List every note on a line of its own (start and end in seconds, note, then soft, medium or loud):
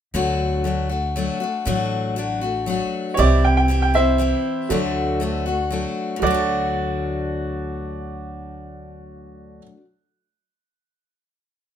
0.14 1.28 D2 medium
0.14 0.65 D3 medium
0.14 0.63 F#3 medium
0.14 0.64 A3 medium
0.14 0.65 D4 medium
0.14 0.66 F#4 medium
0.64 0.90 F#3 medium
0.64 0.90 A3 medium
0.64 0.90 D4 medium
0.64 0.88 F#4 medium
0.89 1.15 A3 soft
0.89 1.16 D4 soft
0.89 1.15 F#4 soft
1.16 1.41 F#3 medium
1.16 1.41 A3 medium
1.16 1.41 D4 medium
1.16 1.39 F#4 medium
1.40 1.66 A3 soft
1.40 1.66 D4 soft
1.40 1.66 F#4 medium
1.65 2.80 A1 medium
1.65 2.16 D3 medium
1.65 2.15 F#3 medium
1.65 2.16 A3 medium
1.65 2.17 D4 medium
1.65 2.18 F#4 medium
2.16 2.42 F#3 medium
2.16 2.43 A3 medium
2.16 2.42 D4 medium
2.16 2.40 F#4 medium
2.41 2.66 A3 soft
2.41 2.67 D4 soft
2.41 2.67 F#4 soft
2.66 3.17 F#3 medium
2.66 3.18 A3 medium
2.66 3.18 D4 medium
2.66 3.18 F#4 medium
3.14 3.68 C3 medium
3.14 3.67 E3 medium
3.14 3.68 C4 medium
3.14 4.66 G4 medium
3.14 3.17 C#5 medium
3.18 4.32 C2 medium
3.18 3.69 E4 medium
3.18 3.69 G4 medium
3.18 4.67 C5 medium
3.18 3.43 D5 medium
3.18 4.68 E5 medium
3.44 3.55 G5 medium
3.57 3.81 G5 medium
3.68 3.94 E3 medium
3.68 3.94 C4 medium
3.68 3.94 E4 medium
3.68 3.93 G4 medium
3.82 3.94 G5 medium
3.94 4.18 C4 soft
3.94 4.19 E4 soft
3.94 4.19 G4 medium
3.94 5.42 C5 medium
3.94 5.42 E5 medium
4.18 4.69 E3 medium
4.18 4.70 C4 medium
4.18 4.70 E4 medium
4.18 4.71 G4 medium
4.69 5.84 D2 medium
4.69 5.21 D3 medium
4.69 5.19 F#3 medium
4.69 5.20 A3 medium
4.69 5.21 D4 medium
4.69 6.18 F#4 medium
4.69 5.22 F#4 medium
4.69 6.19 A4 medium
4.69 6.20 D5 medium
5.20 5.45 F#3 medium
5.20 5.46 A3 medium
5.20 5.46 D4 medium
5.20 5.45 F#4 medium
5.46 5.71 A3 soft
5.46 5.71 D4 soft
5.46 5.71 F#4 medium
5.71 6.21 F#3 medium
5.71 6.22 A3 medium
5.71 6.22 D4 medium
5.71 6.23 F#4 medium
6.16 9.66 D3 medium
6.16 9.56 F#4 medium
6.22 9.58 D2 medium
6.22 9.72 F#3 medium
6.22 9.59 F#4 medium
6.22 9.59 A4 medium
6.22 9.59 D5 medium
6.22 9.62 D5 medium
6.27 9.77 A3 medium
6.31 9.81 D4 medium
6.31 9.84 F#4 medium